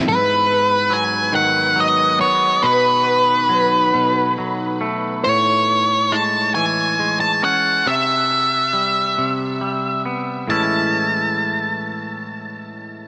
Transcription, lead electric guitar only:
X:1
M:6/8
L:1/16
Q:3/8=46
K:Alyd
V:1 name="Lead electric guitar"
B4 g2 f2 d2 c2 | B8 z4 | c4 a2 g3 a f2 | e8- e2 z2 |
a12 |]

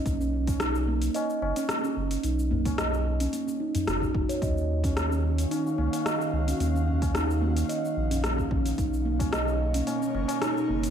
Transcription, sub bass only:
X:1
M:4/4
L:1/8
Q:"Swing 16ths" 1/4=110
K:Cblyd
V:1 name="Sub bass" clef=bass
=B,,,4 z ^F,,, z F,,, | =B,,,4 z2 ^F,,, F,,, | E,,4 z D,, z D,, | E,,4 z B,,,3 |
=B,,,4 z ^F,,, z F,,, |]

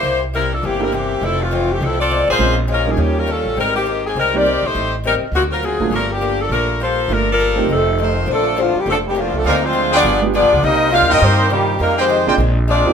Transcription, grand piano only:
X:1
M:4/4
L:1/8
Q:"Swing" 1/4=204
K:Fmix
V:1 name="Grand piano"
z4 z [B,D=EG] z2 | z8 | [_A,C_DF] z2 [G,B,DE]3 z2 | z4 z [G,B,CE] z2 |
z6 z [A,^A,D^E] | z8 | [A,B,DF] z2 [A,CEG] z4 | [K:Bb] z8 |
z4 z [_A,=B,DFG] z2 | z8 | z3 [B,CDF_A] z3 [B,CEFG] |]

